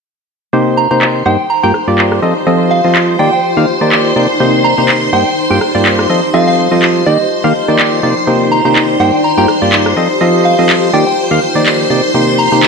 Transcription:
0.53 synth stab C3 A#3 D#4 G4 C5, string machine C5 C6, cabasa
0.67 cabasa
0.77 synth bell A#5, cabasa
0.91 synth stab C3 A#3 D#4 G4 C5, synth bell A#5, cabasa
1.02 clap, cabasa
1.15 cabasa
1.26 synth stab G2 A#3 D#4 G4 C5, synth bell G5, cabasa
1.39 cabasa
1.50 synth bell A#5, cabasa
1.63 synth stab G2 A#3 F4 G4 G5, synth bell A#5, cabasa
1.74 cross-stick, cabasa
1.88 synth stab G2 A#3 F4 G4 D5, cabasa
1.98 clap, cabasa
2.12 cross-stick, cabasa
2.22 synth stab F3 C4 F4 A4 D#5, ambient pad F4, cabasa
2.36 cabasa
2.47 synth stab F3 C4 F4 A4 D#5, cabasa
2.60 cabasa
2.71 synth bell F5, cabasa
2.84 synth stab F3 C4 F4 A4 D#5, cabasa
2.95 clap, cabasa
3.19 synth stab D#3 A#3 D#4 G4 D5, ambient pad D#4, synth bell G5, cabasa
3.33 synth bell G5, cabasa
3.43 cabasa
3.57 synth stab D#3 A#3 D#4 G4 F5, cabasa
3.68 cabasa
3.81 synth stab D#3 A#3 D#4 G4 D5, cabasa
3.92 clap, cabasa
4.16 synth stab C3 A#3 D#4 G4 D5, cabasa
4.30 cabasa
4.40 synth stab C3 A#3 D#4 G4 C5, cabasa
4.54 cabasa
4.64 synth bell A#5, cabasa
4.78 synth stab C3 A#3 D#4 G4 C5, synth bell A#5, cabasa
4.89 clap, cabasa
5.13 synth stab G2 A#3 D#4 G4 C5, synth bell G5, cabasa
5.37 cabasa
5.50 synth stab G2 A#3 F4 G4 G5
5.61 cross-stick, cabasa
5.75 synth stab G2 A#3 F4 G4 D5, cabasa
5.85 clap, cabasa
5.99 cross-stick
6.09 synth stab F3 C4 F4 A4 D#5, ambient pad F4, cabasa
6.23 cabasa
6.34 synth stab F3 C4 F4 A4 D#5, synth bell F5, cabasa
6.47 synth bell F5
6.58 cabasa
6.71 synth stab F3 C4 F4 A4 D#5, cabasa
6.82 clap, cabasa
7.06 synth stab D#3 A#3 D#4 G4 D5, ambient pad D#4, synth bell D#5, cabasa
7.20 cabasa
7.31 cabasa
7.44 synth stab D#3 A#3 D#4 G4 F5, cabasa
7.55 cabasa
7.68 synth stab D#3 A#3 D#4 G4 D5, cabasa
7.79 clap, cabasa
7.93 cabasa
8.03 synth stab C3 A#3 D#4 G4 D5, cabasa
8.17 cabasa
8.27 synth stab C3 A#3 D#4 G4 C5, string machine C5 C6, cabasa
8.41 cabasa
8.52 synth bell A#5, cabasa
8.65 synth stab C3 A#3 D#4 G4 C5, synth bell A#5, cabasa
8.76 clap, cabasa
8.89 cabasa
9.00 synth stab G2 A#3 D#4 G4 C5, synth bell G5, cabasa
9.13 cabasa
9.24 synth bell A#5, cabasa
9.38 synth stab G2 A#3 F4 G4 G5, synth bell A#5, cabasa
9.48 cross-stick, cabasa
9.62 synth stab G2 A#3 F4 G4 D5, cabasa
9.72 clap, cabasa
9.86 cross-stick, cabasa
9.97 synth stab F3 C4 F4 A4 D#5, ambient pad F4, cabasa
10.10 cabasa
10.21 synth stab F3 C4 F4 A4 D#5, cabasa
10.34 cabasa
10.45 synth bell F5, cabasa
10.59 synth stab F3 C4 F4 A4 D#5, cabasa
10.69 clap, cabasa
10.83 cabasa
10.93 synth stab D#3 A#3 D#4 G4 D5, ambient pad D#4, synth bell G5, cabasa
11.07 synth bell G5, cabasa
11.18 cabasa
11.31 synth stab D#3 A#3 D#4 G4 F5, cabasa
11.42 cabasa
11.55 synth stab D#3 A#3 D#4 G4 D5, cabasa
11.66 clap, cabasa
11.80 cabasa
11.90 synth stab C3 A#3 D#4 G4 D5, cabasa
12.04 cabasa
12.14 synth stab C3 A#3 D#4 G4 C5, cabasa
12.28 cabasa
12.39 synth bell A#5, cabasa
12.52 synth stab C3 A#3 D#4 G4 C5, synth bell A#5, cabasa
12.63 clap, cabasa

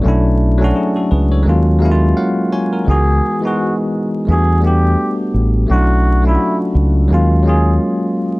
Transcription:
0.02 fingered electric bass B1, tine electric piano F#3 A3 C#4
0.06 tine electric piano D4 E4
0.58 tine electric piano F#3 A3 C#4
0.63 tine electric piano D4 F#4
0.76 tine electric piano E4 G#4
0.96 tine electric piano F#4 A4
1.11 fingered electric bass C#2, tine electric piano G#4 B4
1.32 tine electric piano A4 C#5
1.43 fingered electric bass D#2, tine electric piano F#3 G#3 A#3
1.48 tine electric piano C#4 F4
1.79 tine electric piano F#3 G#3 A#3 F5
1.84 tine electric piano C#4 E4
1.91 tine electric piano F4
2.17 tine electric piano C#5 F5 F#5
2.52 tine electric piano A#4 C#5 G#5
2.73 tine electric piano F#4 A#4
2.84 fingered electric bass C#2, tine electric piano E3 G#3 B3
2.89 tine electric piano D#4 F#4, muted trumpet G#4
3.40 tine electric piano E3 G#3 B3
3.45 tine electric piano D#4 G#4, muted trumpet F#4
4.25 fingered electric bass E2, tine electric piano G3 A3 B3
4.30 tine electric piano D4 F#4, muted trumpet G#4
4.61 tine electric piano G3 A3 B3
4.66 tine electric piano D4 G4, muted trumpet G4
5.34 fingered electric bass A1
5.67 fingered electric bass B1, tine electric piano F#3 A3 C#4
5.71 tine electric piano D4 E4, muted trumpet F#4
6.22 tine electric piano F#3 A3 C#4
6.27 tine electric piano D4 F4, muted trumpet E4
6.35 tine electric piano F#4
6.75 fingered electric bass C#2
7.08 fingered electric bass D#2, tine electric piano F#3 G#3 A#3
7.13 tine electric piano C#4 F4
7.43 tine electric piano F#3 G#3 A#3
7.48 tine electric piano C#4 F4, muted trumpet G#4

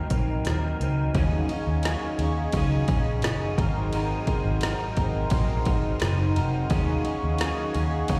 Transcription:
Already playing: clean electric guitar G#2 D#3 F#3 C4 D#4
0.10 picked electric bass A#1, clean electric guitar F#3 C4 D#4 A#4, kick, closed hi-hat
0.45 picked electric bass D#2, clean electric guitar F#3 C4 D#4 A#4, snare, closed hi-hat
0.80 picked electric bass C#2, clean electric guitar F#3 C4 D#4 A#4, closed hi-hat
1.15 picked electric bass D#2, clean electric guitar D#3 F#3 C#4 D#4 G#4, analog synth pad G#4 F5 F#5 C#6, kick, ride
1.49 clean electric guitar D#4 G#4, ride
1.53 clean electric guitar C#4
1.67 picked electric bass D#2
1.83 clean electric guitar D#3 F#3 C#4 D#4 G#4, snare, ride
2.18 picked electric bass D#2, clean electric guitar D#4 G#4, ride
2.22 clean electric guitar C#4
2.52 picked electric bass C#2, clean electric guitar F#3 C#4 D#4, kick, ride
2.57 clean electric guitar G#4
2.88 picked electric bass A#1, clean electric guitar C#4 D#4 G#4, kick, ride
3.22 picked electric bass F#1, clean electric guitar D#3 F#3 C#4 D#4 G#4, snare, ride
3.58 picked electric bass G#1, clean electric guitar F#3 C4 D#4 A#4, analog synth pad A#5 C6, kick, ride
3.93 clean electric guitar G#2 D#3 F#3 C4 D#4 A#4, ride
4.27 clean electric guitar C4 D#4 A#4, kick, ride
4.32 clean electric guitar F#3
4.45 picked electric bass G#1
4.61 clean electric guitar G#2 D#3 F#3 C4 D#4 A#4, snare, ride
4.97 picked electric bass G#1, clean electric guitar F#3 C4 D#4 A#4, kick, ride
5.30 picked electric bass A#1, clean electric guitar F#3 C4 D#4, kick, ride
5.34 clean electric guitar A#4
5.65 picked electric bass G#1, clean electric guitar F#3 C4 D#4 A#4, kick, ride
6.00 picked electric bass F#1, clean electric guitar G#2 D#3 F#3 C4 D#4 A#4, snare, ride
6.35 picked electric bass F1, clean electric guitar F#3 C4 D#4 A#4, ride
6.70 picked electric bass D#2, clean electric guitar D#3 F#3 C#4 D#4 G#4, analog synth pad G#4 F5 C#6, kick, ride
7.05 clean electric guitar C#4 D#4 G#4, ride
7.24 picked electric bass D#2
7.38 clean electric guitar D#3 F#3 C#4 D#4 G#4, snare, ride
7.74 picked electric bass D#2, clean electric guitar C#4 D#4 G#4, ride
8.08 picked electric bass C#2, clean electric guitar F#3 C#4 D#4, kick, ride
8.13 clean electric guitar G#4

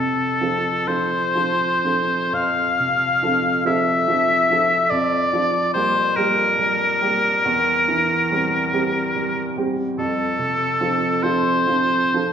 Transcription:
Already playing: grand piano F2 C3, oboe A4
0.41 grand piano F3 C4 A4
0.87 grand piano F3 C4 A4, oboe C5
1.35 grand piano F3
1.85 grand piano F3 C4 A4
2.32 grand piano F2, oboe F5
2.79 grand piano C3
3.23 grand piano F3 C4 A4
3.65 grand piano F3 C4 A4, oboe E5
4.08 grand piano F3
4.51 grand piano F3 C4 A4
4.90 grand piano F2, oboe D5
5.33 grand piano F3
5.74 grand piano G3 A#3 G4, oboe C5
6.16 grand piano G3 A#3 G4, oboe A#4
6.59 grand piano G3
7.01 grand piano G3 A#3 G4
7.45 grand piano E2
7.88 grand piano E3
8.31 grand piano G3 C4 G4
8.73 grand piano G3 C4 G4
9.15 grand piano G3
9.57 grand piano G3 C4 G4
9.98 grand piano F2, oboe A4
10.38 grand piano C3
10.81 grand piano F3 C4 A4
11.22 grand piano F3 C4 A4, oboe C5
11.67 grand piano F3
12.14 grand piano F3 C4 A4

